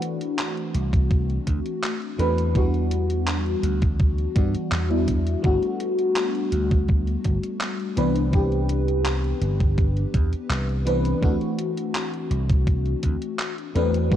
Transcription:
Already playing: fm electric piano E3 A3 C4 D4 F#4
0.02 closed hi-hat
0.21 closed hi-hat
0.39 clap, closed hi-hat
0.57 closed hi-hat
0.74 slap bass C2, closed hi-hat
0.93 kick, closed hi-hat
1.11 kick, closed hi-hat
1.29 closed hi-hat
1.47 slap bass D2, kick, closed hi-hat
1.65 closed hi-hat
1.83 clap, closed hi-hat
2.02 closed hi-hat
2.18 slap bass E2, fm electric piano E3 A3 C4 D4 B4, closed hi-hat
2.38 closed hi-hat
2.54 fm electric piano E3 G3 B3 D4 F#4, kick, closed hi-hat
2.74 closed hi-hat
2.91 closed hi-hat
3.10 closed hi-hat
3.27 clap, closed hi-hat
3.46 closed hi-hat
3.63 slap bass D2, closed hi-hat
3.82 kick, closed hi-hat
3.99 kick, closed hi-hat
4.18 closed hi-hat
4.35 slap bass G2, fm electric piano E3 G3 B3 D4 F#4, kick, closed hi-hat
4.54 muted slap bass stroke, closed hi-hat
4.72 slap bass E2, clap, closed hi-hat
4.89 fm electric piano E3 G3 B3 D4 E4, closed hi-hat
5.08 kick, closed hi-hat
5.27 closed hi-hat
5.42 slap bass G1, fm electric piano G3 A3 B3 D4 F#4, kick, closed hi-hat
5.63 closed hi-hat
5.80 closed hi-hat
5.99 closed hi-hat
6.16 clap, closed hi-hat
6.35 closed hi-hat
6.52 slap bass D2, closed hi-hat
6.71 kick, closed hi-hat
6.88 kick, closed hi-hat
7.07 closed hi-hat
7.24 slap bass G1, kick, closed hi-hat
7.43 closed hi-hat
7.61 clap, closed hi-hat
7.80 closed hi-hat
7.96 slap bass C2, fm electric piano E3 B3 C4 D4 B4, closed hi-hat
8.15 closed hi-hat
8.32 fm electric piano E3 B3 C4 D4 G4, kick, closed hi-hat
8.52 closed hi-hat
8.69 closed hi-hat
8.88 closed hi-hat
9.06 clap, closed hi-hat
9.24 closed hi-hat
9.41 slap bass G1, closed hi-hat
9.60 kick, closed hi-hat
9.78 kick, closed hi-hat
9.97 closed hi-hat
10.14 slap bass E2, kick, closed hi-hat
10.32 muted slap bass stroke, closed hi-hat
10.50 slap bass C2, clap, closed hi-hat
10.69 closed hi-hat
10.86 fm electric piano E3 B3 C4 D4 B4, closed hi-hat
11.05 closed hi-hat
11.21 slap bass D2, fm electric piano E3 A3 C4 D4 F#4, kick, closed hi-hat
11.41 closed hi-hat
11.59 closed hi-hat
11.77 closed hi-hat
11.95 clap, closed hi-hat
12.13 closed hi-hat
12.31 slap bass C2, closed hi-hat
12.49 kick, closed hi-hat
12.67 kick, closed hi-hat
12.86 closed hi-hat
13.03 slap bass D2, kick, closed hi-hat
13.22 closed hi-hat
13.39 clap, closed hi-hat
13.58 closed hi-hat
13.75 slap bass E2, fm electric piano E3 A3 C4 D4 B4, closed hi-hat
13.94 closed hi-hat
14.10 fm electric piano E3 G3 B3 D4 F#4, kick, closed hi-hat

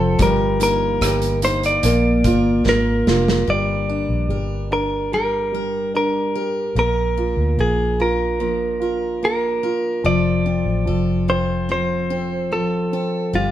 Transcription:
Already playing: fingered electric bass F1, grand piano F3 C4, steel-string acoustic guitar F3 C4 F4 A4, clean electric guitar A4
0.19 fingered electric bass G1, steel-string acoustic guitar G2, grand piano G3, clean electric guitar A#4, kick, closed hi-hat
0.60 steel-string acoustic guitar A#3, grand piano D#4, clean electric guitar A#4, closed hi-hat
1.01 fingered electric bass G1, steel-string acoustic guitar D#4, grand piano G4, cross-stick, closed hi-hat
1.22 closed hi-hat
1.42 steel-string acoustic guitar A#3, grand piano D#4, clean electric guitar C5, closed hi-hat
1.63 clean electric guitar D5, closed hi-hat
1.83 fingered electric bass A#1, steel-string acoustic guitar A#2, grand piano A#3, closed hi-hat
2.24 fingered electric bass G1, grand piano F4, steel-string acoustic guitar A#4, kick, closed hi-hat
2.65 fingered electric bass G#1, grand piano A#3, steel-string acoustic guitar A#3, clean electric guitar A#4, snare
3.07 fingered electric bass F1, steel-string acoustic guitar D4, grand piano F4, snare
3.28 snare
3.47 fingered electric bass G1, steel-string acoustic guitar G2 A#4, grand piano G3, clean electric guitar D5
3.89 grand piano D4, steel-string acoustic guitar D4
4.09 fingered electric bass A#1
4.29 fingered electric bass G1, grand piano G4, steel-string acoustic guitar A#4
4.71 grand piano D4, steel-string acoustic guitar D4, clean electric guitar A#4
5.12 steel-string acoustic guitar G3, grand piano G4, clean electric guitar A#4
5.52 grand piano G3, steel-string acoustic guitar A#4
5.94 grand piano D4, steel-string acoustic guitar D4, clean electric guitar A#4
6.35 grand piano G4, steel-string acoustic guitar A#4
6.75 fingered electric bass A#1, steel-string acoustic guitar A#2 A#4, grand piano A#3, clean electric guitar A#4
7.17 steel-string acoustic guitar D4, grand piano F4
7.37 fingered electric bass D2
7.58 fingered electric bass A#1, grand piano A#3, clean electric guitar G#4, steel-string acoustic guitar A#4
8.00 steel-string acoustic guitar D4, grand piano F4, clean electric guitar A#4
8.40 steel-string acoustic guitar F3, grand piano A#3
8.80 grand piano F4, steel-string acoustic guitar A#4
9.22 grand piano A#3, steel-string acoustic guitar D4, clean electric guitar A#4
9.63 grand piano F4, steel-string acoustic guitar A#4
10.04 fingered electric bass F1, grand piano F3, steel-string acoustic guitar F3 A4, clean electric guitar D5
10.46 grand piano C4, steel-string acoustic guitar F4
10.66 fingered electric bass A1
10.86 fingered electric bass F1, grand piano F3, steel-string acoustic guitar A4
11.28 grand piano C4, steel-string acoustic guitar F4, clean electric guitar C5
11.69 grand piano F3, steel-string acoustic guitar C4, clean electric guitar C5
12.10 grand piano C4, steel-string acoustic guitar A4
12.52 grand piano F3, steel-string acoustic guitar F4, clean electric guitar A4
12.92 grand piano C4, steel-string acoustic guitar A4
13.33 fingered electric bass G1, steel-string acoustic guitar G2 G4, grand piano G3, clean electric guitar F4

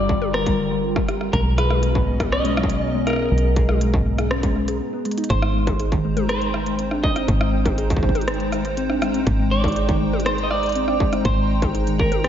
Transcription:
Already playing: fm bass G1, analog synth pad D3 G3 F4 G5 A#5, clean electric guitar D5
0.09 synth pluck G3, kick
0.22 synth pluck G4, high tom
0.34 synth pluck D4, clean electric guitar A#4, cross-stick
0.46 synth pluck G3, kick, closed hi-hat
0.59 synth pluck G3
0.71 synth pluck G3
0.84 synth pluck C4
0.96 synth pluck G3, kick, cross-stick
1.08 synth pluck G4, cross-stick, closed hi-hat
1.21 synth pluck G4, cross-stick
1.33 fm bass B1, analog synth pad B2, synth pluck G#3, clean electric guitar A#4, kick, closed hi-hat
1.46 synth pluck G#3, analog synth pad B3 C#4
1.58 synth pluck G#4, clean electric guitar B4, cross-stick, closed hi-hat
1.66 analog synth pad D#5
1.70 synth pluck G#3, cross-stick, high tom
1.83 synth pluck G#3, closed hi-hat
1.95 synth pluck G#2, kick
2.08 synth pluck G#3
2.20 synth pluck G#4, kick, cross-stick, closed hi-hat, high tom
2.32 synth pluck C#4, clean electric guitar D#5, cross-stick
2.45 synth pluck G#3, closed hi-hat
2.57 synth pluck F#3, cross-stick
2.63 kick
2.70 synth pluck G#3, closed hi-hat
2.82 synth pluck B3, clean electric guitar C#5
2.94 synth pluck G#3
3.07 synth pluck G#4, clean electric guitar A#4, cross-stick, closed hi-hat
3.10 cross-stick
3.16 synth pluck G#4, cross-stick
3.19 cross-stick
3.22 cross-stick
3.25 cross-stick
3.29 fm bass B1, synth pluck G#3, cross-stick
3.38 closed hi-hat
3.44 synth pluck G#3
3.56 synth pluck G#4, kick, closed hi-hat
3.69 synth pluck G#3, cross-stick, high tom
3.81 synth pluck G#3, closed hi-hat
3.94 synth pluck G#2, kick
4.06 synth pluck G#3
4.18 synth pluck G#4, cross-stick, closed hi-hat
4.31 synth pluck C#4, cross-stick
4.43 synth pluck G#3, kick, closed hi-hat
4.56 synth pluck G#3
4.68 synth pluck G#4, closed hi-hat
4.80 synth pluck B3
4.93 synth pluck B3
5.05 synth pluck G#3, closed hi-hat
5.11 closed hi-hat
5.18 synth pluck D#4, closed hi-hat
5.24 closed hi-hat
5.30 fm bass G#1, analog synth pad G#3, clean electric guitar C5, kick, closed hi-hat
5.42 synth pluck G#3, cross-stick
5.51 analog synth pad D#4
5.55 synth pluck G#3
5.67 synth pluck D#4, kick, closed hi-hat, high tom
5.80 synth pluck G#4, analog synth pad C5 A#5, closed hi-hat
5.92 synth pluck D#3, kick, closed hi-hat
6.04 synth pluck G#3
6.12 analog synth pad G5
6.17 synth pluck G#3, closed hi-hat, high tom
6.29 synth pluck G#4, clean electric guitar C5, cross-stick, closed hi-hat
6.42 synth pluck G#3, closed hi-hat
6.54 synth pluck G#3, cross-stick
6.66 synth pluck G#3, closed hi-hat
6.79 synth pluck C4, closed hi-hat
6.91 synth pluck D4, cross-stick
7.04 synth pluck G#3, clean electric guitar D#5, kick
7.16 synth pluck C4, cross-stick, closed hi-hat
7.28 fm bass G#1, synth pluck G#3, kick, closed hi-hat
7.41 synth pluck G#3, cross-stick
7.53 synth pluck G#3
7.66 synth pluck D#4, kick, closed hi-hat, high tom
7.78 synth pluck G#4, closed hi-hat
7.90 synth pluck D#3, kick, closed hi-hat, shaker
7.97 kick
8.03 synth pluck G#3, kick
8.09 kick
8.15 synth pluck G#3, closed hi-hat, high tom
8.21 closed hi-hat
8.28 synth pluck G#4, cross-stick, closed hi-hat
8.34 closed hi-hat
8.40 synth pluck G#3, closed hi-hat
8.52 synth pluck G#3, cross-stick, shaker
8.65 synth pluck G#3, closed hi-hat
8.77 synth pluck C4, closed hi-hat
8.90 synth pluck D4, cross-stick
9.02 synth pluck G#3, cross-stick, shaker
9.14 synth pluck C4, closed hi-hat
9.27 fm bass G#1, synth pluck G#3, kick, closed hi-hat
9.39 synth pluck G#3
9.51 synth pluck G#3, clean electric guitar D5
9.64 synth pluck D#4, kick, closed hi-hat, high tom
9.68 closed hi-hat
9.72 closed hi-hat
9.76 synth pluck G#4, closed hi-hat
9.89 synth pluck D#3, kick, closed hi-hat
10.01 synth pluck G#3
10.13 synth pluck G#3, high tom
10.20 closed hi-hat
10.26 synth pluck G#4, clean electric guitar C5, cross-stick, closed hi-hat
10.38 synth pluck G#3, closed hi-hat
10.44 clean electric guitar D#5
10.51 synth pluck G#3, clean electric guitar D5, cross-stick
10.63 synth pluck G#3, closed hi-hat
10.66 closed hi-hat
10.69 closed hi-hat
10.72 closed hi-hat
10.75 synth pluck C4, closed hi-hat
10.88 synth pluck D4, cross-stick
11.00 synth pluck G#3, kick
11.13 synth pluck C4, cross-stick, closed hi-hat
11.25 fm bass G#1, clean electric guitar C5, kick, closed hi-hat
11.37 synth pluck G#3
11.50 synth pluck G#3
11.62 synth pluck D#4, kick, closed hi-hat, high tom
11.75 synth pluck G#4, closed hi-hat
11.87 synth pluck D#3, closed hi-hat, shaker
11.99 synth pluck G#3, clean electric guitar A#4, kick
12.12 synth pluck G#3, closed hi-hat, high tom
12.24 synth pluck G#4, clean electric guitar G#4, cross-stick, closed hi-hat

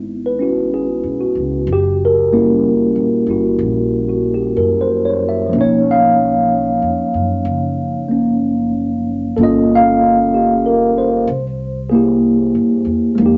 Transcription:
Already playing: upright bass G#1, tine electric piano G#3 B3 D#4 E4
0.26 tine electric piano B4
0.39 tine electric piano C#4 E4 F#4
0.74 tine electric piano G#4
1.03 upright bass B1
1.21 tine electric piano F#4
1.35 upright bass C#2
1.67 upright bass F#1
1.73 tine electric piano G4
2.05 tine electric piano A#4
2.33 tine electric piano G3 A#3 C#4 E4
2.95 upright bass A#1
3.27 upright bass G1, tine electric piano E4
3.31 tine electric piano F#4
3.59 upright bass A#1
4.09 tine electric piano F#4
4.34 tine electric piano G4
4.57 upright bass F#2, tine electric piano A#4
4.81 tine electric piano C5
5.05 tine electric piano C#5
5.29 tine electric piano E5
5.48 tine electric piano F3 A#3
5.53 upright bass B1, tine electric piano C#4
5.59 tine electric piano D#4 C#5
5.91 tine electric piano F5
6.82 upright bass F2
7.14 upright bass F#2
7.45 upright bass F#1
8.09 tine electric piano A#3 C#4
9.37 upright bass G1, tine electric piano A#3 C#4 A4
9.41 tine electric piano F4 D#5
9.75 tine electric piano F5
10.34 tine electric piano G4
10.66 tine electric piano A#4
10.98 tine electric piano C5
11.27 upright bass C2
11.90 tine electric piano A#3 E4 G#4
11.95 tine electric piano G4
12.55 upright bass G2
12.85 upright bass E2
13.15 upright bass F2, tine electric piano G#3 A#3
13.22 tine electric piano D#4 G4

